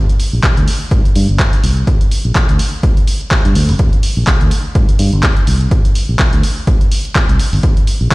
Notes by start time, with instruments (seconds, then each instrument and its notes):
0.09 closed hi-hat
0.20 open hi-hat
0.33 fingered electric bass A#1
0.43 kick, clap, closed hi-hat
0.57 fingered electric bass D2, closed hi-hat
0.68 open hi-hat
0.91 fingered electric bass G2, kick, closed hi-hat
1.05 muted fingered electric bass stroke, closed hi-hat
1.16 fingered electric bass G2, open hi-hat
1.29 fingered electric bass G1, closed hi-hat
1.39 kick, clap, closed hi-hat
1.53 closed hi-hat
1.64 fingered electric bass C2, open hi-hat
1.77 closed hi-hat
1.87 kick, closed hi-hat
2.01 closed hi-hat
2.11 open hi-hat
2.25 fingered electric bass A#1, closed hi-hat
2.35 fingered electric bass A#1, kick, clap, closed hi-hat
2.49 fingered electric bass D2, closed hi-hat
2.59 open hi-hat
2.83 kick, closed hi-hat
2.97 closed hi-hat
3.07 open hi-hat
3.21 closed hi-hat
3.31 kick, clap, closed hi-hat
3.45 fingered electric bass G2, closed hi-hat
3.55 fingered electric bass D2, open hi-hat
3.69 fingered electric bass F1, open hi-hat
3.79 fingered electric bass G1, kick, closed hi-hat
3.93 closed hi-hat
4.03 open hi-hat
4.17 fingered electric bass A#1
4.27 kick, clap, closed hi-hat
4.41 fingered electric bass D2, closed hi-hat
4.51 open hi-hat
4.75 fingered electric bass G2, kick, closed hi-hat
4.89 muted fingered electric bass stroke, closed hi-hat
4.99 fingered electric bass G2, open hi-hat
5.13 fingered electric bass G1, closed hi-hat
5.23 kick, clap, closed hi-hat
5.37 closed hi-hat
5.47 fingered electric bass C2, open hi-hat
5.61 closed hi-hat
5.71 kick, closed hi-hat
5.85 closed hi-hat
5.95 open hi-hat
6.09 fingered electric bass A#1
6.19 kick, clap, closed hi-hat
6.33 fingered electric bass D2, closed hi-hat
6.43 open hi-hat
6.67 kick, closed hi-hat
6.81 closed hi-hat
6.92 open hi-hat
7.05 closed hi-hat
7.15 kick, clap, closed hi-hat
7.29 fingered electric bass C2, closed hi-hat
7.39 muted fingered electric bass stroke, open hi-hat
7.53 fingered electric bass G1, open hi-hat
7.63 kick, closed hi-hat
7.77 closed hi-hat
7.87 open hi-hat
8.01 fingered electric bass A#1
8.11 kick